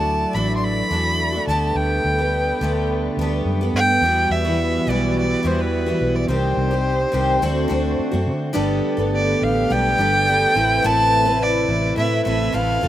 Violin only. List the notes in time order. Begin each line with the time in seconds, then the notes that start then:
Already playing: A5
0.35 B5
0.56 C6
0.64 B5
1.48 A5
1.76 G5
3.76 G5
4.32 E5
4.90 D5
5.19 D5
5.47 C5
5.61 B4
6.15 D5
6.30 C5
9.15 D5
9.43 F5
9.72 G5
10.86 A5
11.42 D5
11.98 E5
12.26 E5
12.54 F5